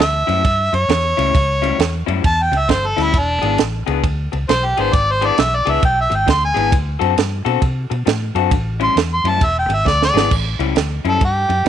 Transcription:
0.00 D2 E5, muted clean electric guitar stroke, snare
0.27 F#2 A2 G3 C#4 E4, ride
0.44 G2, muted clean electric guitar stroke, kick, ride
0.73 F#2 C#5, muted clean electric guitar stroke, ride
0.89 E2, muted clean electric guitar stroke, snare, ride
1.17 C#2 A2 G3 C#4 E4, ride
1.34 C#2, muted clean electric guitar stroke, kick, ride
1.62 A2 G3 C#4 E4, ride
1.78 E2, muted clean electric guitar stroke, snare, ride
2.06 F#2 A2 G3 C#4 E4, ride
2.23 E2 A5, muted clean electric guitar stroke, kick, ride
2.42 G5
2.51 C#2, muted clean electric guitar stroke, ride
2.58 E5
2.69 G1 C5, muted clean electric guitar stroke, kick, snare, ride
2.87 A4
2.97 D2 A2 G3 C#4 E4, snare, ride
3.03 E4
3.13 E1, muted clean electric guitar stroke, kick, ride
3.18 D4
3.42 G#1 E3 B3 D4 G#4, ride
3.58 muted clean electric guitar stroke, snare, ride
3.87 C#2 E3 B3 D4 G#4, ride
4.03 D2, muted clean electric guitar stroke, kick, ride
4.32 C#2, muted clean electric guitar stroke, ride
4.49 B1 C5, muted clean electric guitar stroke, snare, ride
4.66 G4
4.77 G#1 E3 B3 D4 G#4 C5, ride
4.93 G#1 D5, muted clean electric guitar stroke, kick, ride
5.12 C5
5.21 E3 B3 D4 G#4, ride
5.27 D5
5.37 B1, muted clean electric guitar stroke, snare, ride
5.41 E5
5.56 D5
5.66 C#2 E3 B3 D4 G#4, ride
5.71 E5
5.82 B1 G5, muted clean electric guitar stroke, kick, ride
6.01 E5
6.10 G#1, muted clean electric guitar stroke, ride
6.15 G5
6.26 D2, muted clean electric guitar stroke, kick, snare, ride
6.31 C6
6.45 G#5
6.54 G#1 E3 B3 D4 G#4, ride
6.72 D2, muted clean electric guitar stroke, kick, ride
6.99 F#2 D3 C4 F#4 A4, ride
7.16 G2, muted clean electric guitar stroke, snare, ride
7.45 B2 D3 C4 F#4 A4, ride
7.62 C3, muted clean electric guitar stroke, kick, ride
7.90 B2, muted clean electric guitar stroke, ride
8.06 A2, muted clean electric guitar stroke, snare, ride
8.35 F#2 D3 C4 F#4 A4, ride
8.51 A1, muted clean electric guitar stroke, kick, ride
8.80 A2 G3 C#4 E4 C6, ride
8.96 E2, muted clean electric guitar stroke, snare, ride
9.14 C6
9.24 F#2 A2 G3 C#4 E4, ride
9.29 A5
9.41 E1 E5, muted clean electric guitar stroke, kick, ride
9.59 G5
9.69 G#1, muted clean electric guitar stroke, ride
9.74 E5
9.85 D2 D5, muted clean electric guitar stroke, kick, snare
10.02 D5, snare
10.14 G#1 E3 B3 D4 G#4, snare
10.30 A1, muted clean electric guitar stroke, kick, crash
10.59 C#2 A2 G3 C#4 E4, ride
10.75 D2, muted clean electric guitar stroke, snare, ride
11.04 F#2 A2 G3 C#4 E4, ride
11.09 A4
11.21 G2, muted clean electric guitar stroke, kick, ride
11.25 G4
11.49 F#2, muted clean electric guitar stroke, ride
11.65 muted clean electric guitar stroke

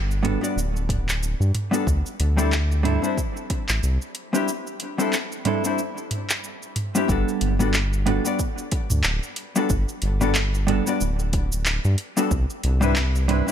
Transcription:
Already playing: G1
0.11 cabasa
0.23 G3 B3 D4 F#4 A4, closed hi-hat, mid tom
0.41 G3 B3 D4 F#4 D5, cabasa
0.56 D1, cabasa
0.77 cabasa
0.89 kick, closed hi-hat, mid tom
1.09 clap, cabasa
1.23 cabasa
1.40 G2, cabasa
1.55 closed hi-hat, mid tom
1.71 G3 B3 D4 F#4 A4, cabasa
1.87 D2, kick, cabasa
2.06 cabasa
2.20 D2, closed hi-hat
2.37 G3 C4 D4 E4 A4, cabasa
2.52 clap, cabasa
2.72 cabasa
2.83 G3 C4 D4 E4 A4, closed hi-hat, mid tom
3.02 G3 C4 D4 E4 C5, cabasa
3.17 kick, cabasa
3.37 cabasa
3.50 kick, closed hi-hat
3.69 A1, clap, cabasa
3.83 C2, cabasa
4.02 cabasa
4.15 closed hi-hat
4.33 G3 C4 D4 E4 G4, cabasa
4.48 cabasa
4.67 cabasa
4.80 closed hi-hat
4.98 G3 C4 D4 E4 A4, cabasa
5.13 clap, cabasa
5.32 cabasa
5.45 G3 C4 D4 E4 A4, closed hi-hat, mid tom
5.64 G3 C4 D4 E4 C5, cabasa
5.78 cabasa
5.98 cabasa
6.11 closed hi-hat, mid tom
6.30 clap, cabasa
6.44 cabasa
6.63 cabasa
6.76 closed hi-hat, mid tom
6.95 G3 C4 D4 E4 G4, cabasa
7.08 G1 G3 B3 D4 F#4 A4, kick, cabasa
7.29 cabasa
7.41 G1, closed hi-hat
7.59 G3 B3 D4 F#4 A4, mid tom, cabasa
7.74 clap, cabasa
7.93 cabasa
8.06 G3 B3 D4 F#4 A4, closed hi-hat, mid tom
8.24 G3 B3 D4 F#4 D5, cabasa
8.39 kick, cabasa
8.58 cabasa
8.72 kick, closed hi-hat
8.90 D2, mid tom, cabasa
9.04 D1, clap, cabasa
9.23 cabasa
9.36 closed hi-hat
9.56 G3 B3 D4 F#4 A4, cabasa
9.70 G1, kick, cabasa
9.89 cabasa
10.02 G1, closed hi-hat
10.21 G3 B3 D4 F#4 A4, mid tom, cabasa
10.35 clap, cabasa
10.54 cabasa
10.67 G3 B3 D4 F#4 A4, closed hi-hat, mid tom
10.86 G3 B3 D4 F#4 D5, cabasa
11.01 D1, cabasa
11.19 cabasa
11.33 kick, closed hi-hat
11.52 cabasa
11.66 clap, cabasa
11.85 G2, cabasa
11.98 closed hi-hat
12.17 G3 B3 D4 F#4 A4, cabasa
12.31 C2, kick, cabasa
12.50 cabasa
12.63 C2, closed hi-hat
12.81 G3 C4 D4 E4 B4, mid tom, cabasa
12.96 clap, cabasa
13.16 cabasa
13.28 G3 C4 D4 E4 B4, closed hi-hat, mid tom
13.47 G3 C4 D4 E4, cabasa

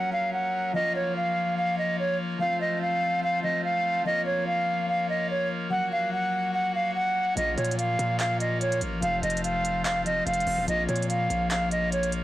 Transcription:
Already playing: F#3 A#3 C#4 F#4 A#4 C#5 F#5
0.13 F5
0.33 F#5
0.73 F3 A#3 C#4 F4 C#5 D#5 F5
0.77 F4
0.96 C#5
1.16 F5
1.57 F5
1.78 D#5
1.99 C#5
2.38 F3 A3 C4 C5 F5
2.42 F4
2.61 D#5
2.81 F5
3.23 F5
3.43 F3 A3 C4 F4 D#5
3.64 F5
4.04 F3 A#3 C#4 C#5 D#5 F5
4.08 F4
4.26 C#5
4.47 F5
4.89 F5
5.09 D#5
5.30 C#5
5.69 F#3 A#3 C#4 F#4 F#5
5.74 F#4
5.92 F5
6.13 F#5
6.54 F#5
6.75 F5
6.95 F#5
7.35 A#1 F3 A#3 C#4 F4 D#5 F5, closed hi-hat
7.39 F4
7.58 A#2 C#5, closed hi-hat
7.65 closed hi-hat
7.71 closed hi-hat
7.78 F5, closed hi-hat
7.99 A#2, closed hi-hat
8.19 F5, clap, closed hi-hat
8.40 D#5, closed hi-hat
8.61 C#5, closed hi-hat
8.72 closed hi-hat
8.81 A1, closed hi-hat
9.00 F1 F3 A3 C4 C5 F5, closed hi-hat
9.04 F4
9.23 F1 D#5, closed hi-hat
9.30 closed hi-hat
9.37 closed hi-hat
9.44 F5, closed hi-hat
9.65 closed hi-hat
9.85 F5, clap, closed hi-hat
10.05 F3 A3 C4 F4 D#5, closed hi-hat
10.27 F1 F5, closed hi-hat
10.34 closed hi-hat
10.40 closed hi-hat
10.47 F1, open hi-hat
10.58 D#1
10.66 A#1 F3 A#3 C#4 C#5 D#5 F5, closed hi-hat
10.71 F4
10.88 A#2 C#5, closed hi-hat
10.96 closed hi-hat
11.02 closed hi-hat
11.09 F5, closed hi-hat
11.30 A#1, closed hi-hat
11.51 F5, clap, closed hi-hat
11.71 D#5, closed hi-hat
11.92 C#5, closed hi-hat
12.03 closed hi-hat
12.12 closed hi-hat

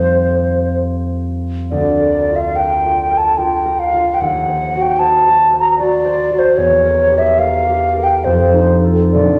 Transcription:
Already playing: F2 C4 F4 A4 C5
1.71 D2 D5
2.01 A#4
2.29 F4
2.36 F5
2.56 A#4 G5
2.84 F4
3.10 A#4
3.17 A5
3.38 F4 G5
3.65 A#4
3.79 F5
3.94 F4
4.14 G5
4.21 D#2 F#5
4.48 C5
4.75 F#4
4.82 G5
4.99 C5 A5
5.26 F#4
5.52 C5
5.60 A#5
5.79 F#4 D5
6.05 C5
6.31 F#4
6.39 C5
6.57 E2 C#5
6.85 A#4
7.11 G4
7.18 E5
7.38 A#4 F5
7.67 G4
7.97 A#4
8.03 G5
8.24 F2 C5
8.53 D#4
8.84 F4 A4
9.12 A#1 D5

